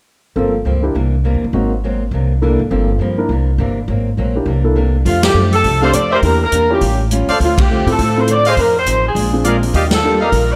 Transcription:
0.36 G1 G2 F3 A#3 C4 F4 A4
0.65 C#2 G2 F3 A#3 C4
0.82 A#3 D4 E4 G4
0.94 C2 C3 E3 A#3 D4
1.24 C3 E3 A#3 D4
1.34 E2
1.44 D#2
1.53 G#1 G#2 F#3 A#3 C4 D#4 F#4
1.84 G#2 F#3 A#3 C4
2.11 C2 C3 E3 A#3 D4
2.42 C3 E3 A#3 D4 E4 A4
2.60 G#1
2.70 G1 G2 F3 A#3 C4 F4 A4
2.99 G2 F3 A#3 C4
3.18 A#3 D4 E4 A#4
3.29 C2 C3 E3 A#3 D4
3.58 G1 C3 E3 A#3 D4
3.88 G#1 G#2 F#3 A#3 C4
4.17 A#1 G#2 F#3 A#3 C4
4.36 A#3 D4 E4 G4
4.46 C2 C3 E3 A#3 D4
4.64 A#3 D4 E4 A4
4.76 C3 E3 A#3 D4
5.05 F2 F3 A3 D4 F4 G4, kick, open hi-hat
5.23 G4, snare, ride
5.34 F#2 F3 A3 D4 G4
5.53 A4, open hi-hat
5.63 C2 F3 A3 D4 G4, kick, open hi-hat
5.82 A3 C4 D4 G4 A4 C5 D5 F5
5.93 F2 F3 A3 D4 G4 D5, closed hi-hat
6.11 G4 A#4 C5 D5 E5
6.22 E2 E3 A#3 D4 E4 G4 A#4, kick, open hi-hat
6.44 A#4
6.52 E2 E3 A#3 D4 G4, closed hi-hat
6.70 C#4 E4 F4 G4
6.81 A1 A2 G3 C#4 F4, kick, open hi-hat
7.11 A2 G3 C#4 F4, closed hi-hat
7.28 A4 C5 D5 F5, muted upright bass stroke, open hi-hat
7.40 D2 D3 A3 C4 F4, kick, open hi-hat
7.58 G4, kick, ride
7.70 D3 A3 C4 F4
7.86 A2 C4 E4 F4 A4, open hi-hat
7.92 A4
7.99 A2 D3 A3 C4 F4, kick, open hi-hat
8.16 C4 E4 F4 A4
8.21 C5
8.28 D3 A3 C4 F4, closed hi-hat
8.32 D5
8.45 G#4 C5 D#5 F5, open hi-hat
8.57 F2 F3 C4 D#4 G#4 A#4, kick, open hi-hat
8.79 C5
8.86 A1 F3 C4 D#4 G#4, closed hi-hat
9.08 G#4
9.15 A#1 A#2 G#3 D4 F4, kick, open hi-hat
9.33 C4 D4 F4 G#4
9.44 A#2 G#3 D4 F4 G#4 A#4 D5 F5, closed hi-hat
9.63 open hi-hat
9.73 D#2 D#3 G3 D4 F4 G4 D5 D#5 F5, kick, open hi-hat
9.91 A4, snare, ride
10.03 D#3 G3 A#3 D4 F4 G4
10.21 G4 A#4 D5 D#5 F5
10.31 A#1 D#3 G3 D4 F4, kick, open hi-hat
10.51 D5

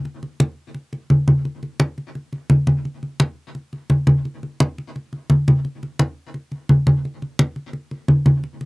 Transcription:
0.05 high conga
0.23 high conga
0.40 high conga
0.75 high conga
0.93 high conga
1.10 high conga
1.28 high conga
1.45 high conga
1.63 high conga
1.80 high conga
1.98 high conga
2.15 high conga
2.33 high conga
2.50 high conga
2.67 high conga
2.85 high conga
3.03 high conga
3.20 high conga
3.55 high conga
3.73 high conga
3.90 high conga
4.07 high conga
4.25 high conga
4.43 high conga
4.60 high conga
4.78 high conga
4.96 high conga
5.13 high conga
5.30 high conga
5.48 high conga
5.65 high conga
5.83 high conga
5.99 high conga
6.34 high conga
6.52 high conga
6.69 high conga
6.87 high conga
7.05 high conga
7.22 high conga
7.39 high conga
7.56 high conga
7.73 high conga
7.91 high conga
8.08 high conga
8.26 high conga
8.44 high conga
8.61 high conga

